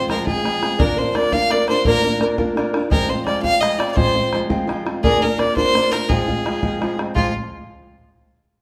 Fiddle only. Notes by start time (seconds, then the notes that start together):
0.10 A#4
0.26 G#4
0.79 A#4
0.98 C5
1.15 D5
1.33 F5
1.51 D5
1.69 C5
1.87 A#4
2.92 A#4
3.09 C5
3.26 D5
3.42 F5
3.61 D#5
3.79 D5
3.91 D5
3.96 C5
5.03 G#4
5.22 A#4
5.39 D5
5.57 C5
5.92 A#4
6.09 G#4
7.15 F4